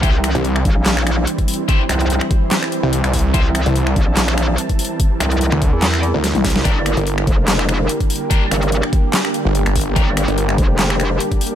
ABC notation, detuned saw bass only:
X:1
M:4/4
L:1/16
Q:"Swing 16ths" 1/4=145
K:Cmix
V:1 name="Detuned saw bass" clef=bass
z3 C,,3 z8 z2 | z8 z3 C,,2 C,,3 | z3 C,,3 z8 z2 | z4 z D,,2 z4 D,,2 C,,2 C,, |
z3 G,,,3 z8 z2 | z8 z3 G,,,2 G,,,3 | z3 G,,,3 z8 z2 |]